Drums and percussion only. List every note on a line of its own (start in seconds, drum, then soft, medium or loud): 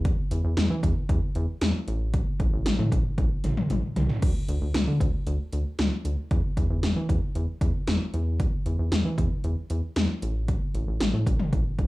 0.05 kick loud
0.05 closed hi-hat medium
0.31 closed hi-hat medium
0.57 snare loud
0.57 closed hi-hat medium
0.83 kick medium
0.83 closed hi-hat medium
1.09 kick medium
1.09 closed hi-hat medium
1.35 closed hi-hat medium
1.61 snare loud
1.61 closed hi-hat medium
1.88 closed hi-hat medium
2.14 kick loud
2.14 closed hi-hat medium
2.40 kick loud
2.40 closed hi-hat medium
2.66 snare loud
2.66 closed hi-hat medium
2.79 mid tom medium
2.92 kick medium
2.92 closed hi-hat medium
3.18 kick medium
3.18 closed hi-hat medium
3.44 closed hi-hat medium
3.44 mid tom medium
3.57 mid tom medium
3.70 closed hi-hat medium
3.70 high tom medium
3.96 closed hi-hat medium
3.96 mid tom medium
4.09 floor tom medium
4.22 kick loud
4.22 closed hi-hat medium
4.22 crash medium
4.48 closed hi-hat medium
4.74 snare loud
4.74 closed hi-hat medium
5.00 kick medium
5.00 closed hi-hat medium
5.27 closed hi-hat medium
5.53 closed hi-hat medium
5.79 snare loud
5.79 closed hi-hat medium
6.05 closed hi-hat medium
6.31 kick loud
6.31 closed hi-hat medium
6.57 kick loud
6.57 closed hi-hat medium
6.83 snare loud
6.83 closed hi-hat medium
7.09 kick medium
7.09 closed hi-hat medium
7.35 closed hi-hat medium
7.61 kick medium
7.61 closed hi-hat medium
7.87 snare loud
7.87 closed hi-hat medium
8.14 closed hi-hat medium
8.40 kick loud
8.40 closed hi-hat medium
8.66 closed hi-hat medium
8.92 snare loud
8.92 closed hi-hat medium
9.18 kick medium
9.18 closed hi-hat medium
9.44 closed hi-hat medium
9.70 closed hi-hat medium
9.96 snare loud
9.96 closed hi-hat medium
10.22 closed hi-hat medium
10.48 kick loud
10.48 closed hi-hat medium
10.75 closed hi-hat medium
11.00 snare loud
11.00 closed hi-hat medium
11.27 kick medium
11.27 closed hi-hat medium
11.39 mid tom medium
11.53 kick medium
11.53 closed hi-hat medium
11.79 kick medium
11.79 closed hi-hat medium